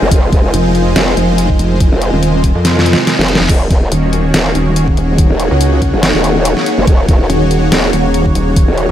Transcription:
Already playing: supersaw synth C3 G#3 F4 C5, ambient pad F4 A#4 D#5 G#5
0.02 wobble bass F#1
0.11 wobble bass F1, kick, closed hi-hat
0.33 wobble bass F1, kick, closed hi-hat
0.54 wobble bass F1, closed hi-hat
0.75 closed hi-hat
0.96 wobble bass F1, snare, closed hi-hat
1.17 wobble bass F1, closed hi-hat
1.38 closed hi-hat
1.50 kick
1.59 wobble bass F1, closed hi-hat
1.80 kick, closed hi-hat
1.92 wobble bass F1
2.02 closed hi-hat
2.13 wobble bass D#1
2.23 closed hi-hat
2.44 kick, closed hi-hat
2.55 wobble bass F2
2.65 snare, closed hi-hat, reverse cymbal
2.79 snare
2.86 closed hi-hat
2.93 snare
3.07 snare, closed hi-hat
3.19 wobble bass F1, snare
3.28 closed hi-hat
3.35 snare
3.40 wobble bass F1
3.49 wobble bass D#1, supersaw synth D#3 A#3 F#4 C#5, ambient pad D#4, kick, closed hi-hat, crash
3.70 wobble bass D#1, ambient pad G#4, kick, closed hi-hat
3.92 wobble bass D#1, ambient pad F#5, closed hi-hat
4.13 ambient pad C#5, closed hi-hat
4.34 wobble bass D#1, snare, closed hi-hat
4.55 wobble bass D#1, closed hi-hat
4.76 closed hi-hat
4.88 kick
4.97 wobble bass D#1, closed hi-hat
5.18 kick, closed hi-hat
5.30 wobble bass D#1
5.40 closed hi-hat
5.51 wobble bass C#2
5.61 closed hi-hat
5.82 kick, closed hi-hat
5.93 wobble bass F#1
6.03 snare, closed hi-hat
6.14 wobble bass D#1
6.24 closed hi-hat
6.45 closed hi-hat
6.57 snare
6.66 closed hi-hat
6.78 wobble bass F1
6.87 wobble bass D#1, kick, closed hi-hat
7.09 wobble bass D#1, kick, closed hi-hat
7.30 wobble bass D#1, closed hi-hat
7.51 closed hi-hat
7.72 wobble bass D#1, snare, closed hi-hat
7.93 wobble bass D#1, closed hi-hat
8.14 closed hi-hat
8.26 kick
8.35 wobble bass D#1, closed hi-hat
8.56 kick, closed hi-hat
8.68 wobble bass D#1
8.78 closed hi-hat

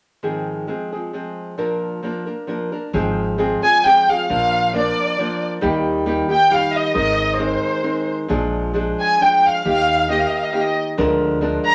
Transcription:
0.23 nylon-string guitar G#2 D#3 F3 G#3 C4 G#4
0.67 nylon-string guitar F3 G#3 C4 G#4
0.92 nylon-string guitar F3 G#3 C4 G#4
1.13 nylon-string guitar F3 G#3 C4 G#4
1.58 nylon-string guitar A#2 F3 A#3 D4 A#4
2.03 nylon-string guitar F3 A#3 D4 A#4
2.26 nylon-string guitar A#3 D4 A#4
2.47 nylon-string guitar F3 A#3 D4 A#4
2.72 nylon-string guitar A#3 D4 A#4
2.93 upright bass G#1, nylon-string guitar G#2 D#3 F3 G#3 C4 G#4
3.38 nylon-string guitar F3 G#3 C4 G#4
3.63 nylon-string guitar F3 G#3 C4 G#4, violin section G#5
3.84 nylon-string guitar F3 G#3 C4 G#4, violin section G5
4.09 nylon-string guitar F3 G#3 C4 G#4, violin section F5
4.29 upright bass A#1, nylon-string guitar A#2 F3 A#3 D4 A#4, violin section F5
4.74 nylon-string guitar F3 A#3 D4 A#4, violin section D5
5.19 nylon-string guitar F3 A#3 D4 A#4
5.61 upright bass D#2, nylon-string guitar D#3 G3 A#3 D#4 G4
6.06 nylon-string guitar G3 A#3 D#4 G4
6.29 nylon-string guitar A#3 D#4 G4, violin section G5
6.50 nylon-string guitar G3 A#3 D#4 G4, violin section F5
6.75 violin section D#5
6.94 upright bass G#1, nylon-string guitar G#3 C4 D#4 A#4, violin section D#5
7.38 nylon-string guitar G#3 C4 D#4 A#4, violin section C5
7.83 nylon-string guitar G#3 C4 D#4 A#4
8.28 upright bass A#1, nylon-string guitar A#2 F3 G#3 D4 G#4
8.74 nylon-string guitar F3 G#3 D4 G#4
9.00 violin section G#5
9.20 nylon-string guitar F3 G#3 D4 G#4, violin section G5
9.45 violin section F5
9.64 upright bass D#2, nylon-string guitar D#3 A#3 D#4 G4, violin section F5
10.09 nylon-string guitar D#3 A#3 D#4 G4, violin section D#5
10.18 violin section F5
10.26 violin section D#5
10.36 violin section F5
10.43 violin section D#5
10.50 nylon-string guitar D#3 A#3 D#4 G4, violin section F5
10.59 violin section D#5
10.98 upright bass D2, nylon-string guitar D3 F3 G#3 D4 A#4
11.41 nylon-string guitar F3 G#3 D4 A#4
11.66 violin section A#5

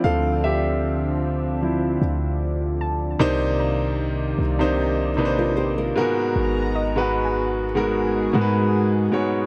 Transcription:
Already playing: analog synth pad D3 F3 C4 D4, grand piano F3 C4 E4 F4 D5
0.04 808-style bass D2, grand piano A4 F5
0.44 grand piano G4 E5
1.62 grand piano F3 C4 E4
2.02 808-style bass D2
2.81 synth pluck A5
3.19 808-style bass C2, grand piano C3 A#3 D4 D#4 C5, analog synth pad C3 D#3 A#3 D5
3.60 synth pluck A#5
4.39 808-style bass C2
4.59 grand piano C3 A#3 D4 D#4 C5
5.17 808-style bass A#1, grand piano C3 A#3 D4 D#4 B4
5.25 grand piano C5
5.39 nylon-string guitar F4 A#4
5.57 nylon-string guitar G4 C5
5.78 nylon-string guitar F4 A#4
5.96 grand piano G#2 G#3 B3 F#4 A#4, analog synth pad G#3 B3 F#4 A#5
6.36 808-style bass G#1
6.75 synth pluck D#5
6.96 grand piano G#2 G#3 B3 F#4 B4
7.01 synth pluck F#5
7.25 synth pluck G#5
7.54 analog synth pad G#4
7.75 grand piano G#2 G#3 B3 F#4 A#4
8.33 grand piano G#2 G#3 B3 F#4 A#4, 808-style bass G#2
8.41 grand piano B4
9.12 grand piano G#2 G#3 B3 F#4 C#5

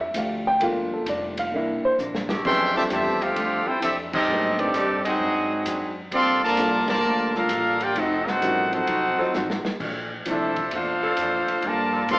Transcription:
Already playing: upright bass F2, saxophone section F3 A3 D4 G4
0.01 grand piano E5
0.14 upright bass D2, hollow-body jazz guitar F3 A3 D4 G4, grand piano F5, hi-hat pedal, ride
0.47 grand piano G5
0.60 upright bass G1, hollow-body jazz guitar G2 F3 A#3 D4, grand piano A3 A#3 F4 F5, ride
0.93 grand piano A4
1.06 upright bass F1, hollow-body jazz guitar G2 F3 A#3 D4, grand piano D5, hi-hat pedal, ride
1.37 grand piano F5, ride
1.52 upright bass C2, hollow-body jazz guitar C3 E3 A#3, grand piano A#3 D4 E4
1.56 hollow-body jazz guitar D4, grand piano E5
1.84 grand piano C5, muted upright bass stroke
1.99 upright bass A#1, hollow-body jazz guitar C3 E3 A#3 D4, hi-hat pedal
2.15 snare
2.29 saxophone section F2 E3 A3 D4 G4, snare
2.44 hollow-body jazz guitar F2 E3 A3 D4, upright bass F2, trombone section E3 A3 C4, grand piano F#3 B3 C#4 D#4 G#4, trumpet section A4 E5 G5 C6, kick, crash
2.74 trombone section C3 E3 A3, grand piano G3 C4 D4 F4 A4, trumpet section G4 C5 E5 A5
2.90 upright bass E2, hollow-body jazz guitar F2 E3 A3 D4, trombone section C3 E3 A3, saxophone section D3 A3 D4 G4, trumpet section G4 C5 E5 A5, hi-hat pedal, ride
3.21 trombone section A3 C4 F4, trumpet section C4 G4 A4 F5, ride
3.36 upright bass D2, hollow-body jazz guitar F2 E3 A3 D4, ride
3.66 trombone section C4 E4 G4, trumpet section E4 A4 C5 G5, muted upright bass stroke
3.80 upright bass F2, hollow-body jazz guitar F2, trombone section A3 C4 E4, trumpet section C4 G4 A4 E5, hi-hat pedal, ride
3.84 hollow-body jazz guitar E3 A3 D4
4.11 trombone section G3 C4 D#4, trumpet section C4 G4 A4 D#5, kick, crash
4.27 upright bass A2, hollow-body jazz guitar A2 G3 C4, grand piano F#3 A#3 B3 D4 G#4
4.32 hollow-body jazz guitar D#4
4.57 trombone section D#3 G3 D4, grand piano G3 C4 D#4 A4 B4, trumpet section C4 G4 A4 D5, ride
4.74 upright bass G2, hollow-body jazz guitar A2 G3 C4 D#4, saxophone section D#3 A3 G4, hi-hat pedal, ride
5.04 trombone section F#3 C4 D#4, trumpet section C4 F#4 G#4 D#5, ride
5.19 upright bass G#2, hollow-body jazz guitar G#2 F#3 C4
5.24 hollow-body jazz guitar D4
5.65 upright bass F#2, hollow-body jazz guitar G#2 F#3 C4 D4, hi-hat pedal, ride
6.11 upright bass G2, hollow-body jazz guitar G3 A#3 F4 A4, trombone section C4, trumpet section A4 D5 F5 C6, ride
6.43 trombone section D3 F3 A#3, trumpet section F4 A#4 D5 A5
6.57 upright bass C2, grand piano G3 A#3 D4 F4 A4, hollow-body jazz guitar G3 A#3 F4 A4, hi-hat pedal, ride
6.88 trombone section D3 F3 A#3, saxophone section G3 A#3 F4 A#4, trumpet section F4 A#4 D5 A5, snare, ride
7.03 upright bass D2, hollow-body jazz guitar G3 A#3 F4 A4
7.34 trombone section A#3 D4 F4, trumpet section D4 A4 A#4 F5, snare
7.48 upright bass A1, hollow-body jazz guitar G3 A#3 F4 A4, hi-hat pedal, ride
7.80 trombone section A#3 D4 G4, trumpet section F4 A#4 D5 G5, ride
7.94 upright bass F1, hollow-body jazz guitar F3 A3 D#4 F#4, trombone section A3 C4 D#4, trumpet section C4 F#4 A4 D#5, ride
8.27 trombone section C4 D#4 F#4, trumpet section D#4 A4 C5 F#5, snare
8.41 upright bass A1, hollow-body jazz guitar F3 A3 D#4 F#4, grand piano G3 C#4 E4 F#4 A#4, hi-hat pedal, ride
8.72 grand piano F#3 C4 D#4 F4 A4, trombone section C4 D#4 F#4, trumpet section D#4 A4 C5 F#5, ride
8.87 upright bass C2, hollow-body jazz guitar F3 A3 D#4, ride
8.91 hollow-body jazz guitar F#4
9.17 saxophone section F#3 D#4 F4 A4, grand piano F#3 C4 D#4 F4 C5, muted upright bass stroke
9.34 upright bass A1, hollow-body jazz guitar F3 A3 D#4 F#4, snare, hi-hat pedal
9.50 snare
9.65 muted upright bass stroke, snare
9.80 upright bass A#1, hollow-body jazz guitar A#2 E3 A3 D4, kick, crash
10.25 upright bass C2, hollow-body jazz guitar A#2 E3 A3 D4, grand piano F3 C4 D4 E4 A4, trombone section F3 A3 E4, trumpet section A4, hi-hat pedal, ride
10.30 trumpet section D4 C5 E5
10.56 kick, ride
10.71 upright bass E2, hollow-body jazz guitar A#2 E3 A3, trumpet section D4 A4 C5 F5, trombone section D4 F4, ride
10.75 trombone section A3, hollow-body jazz guitar D4
11.02 saxophone section E3 C4 D4 A4
11.17 upright bass F2, hollow-body jazz guitar A#2 E3, hi-hat pedal, ride
11.21 hollow-body jazz guitar A3 D4
11.48 muted upright bass stroke, ride
11.62 upright bass G2, trombone section D3 F3 A#3, hollow-body jazz guitar G3, trumpet section F4 A#4 D5 A5, ride
11.66 hollow-body jazz guitar A#3 F4 A4
11.92 saxophone section G3 A#3 F4 A4
12.08 upright bass A#2, grand piano G3 A#3 D4 F4 A4, hollow-body jazz guitar G3 A#3 F4, trombone section C4, trumpet section A4 D5 F5 C6, hi-hat pedal, ride
12.13 hollow-body jazz guitar A4

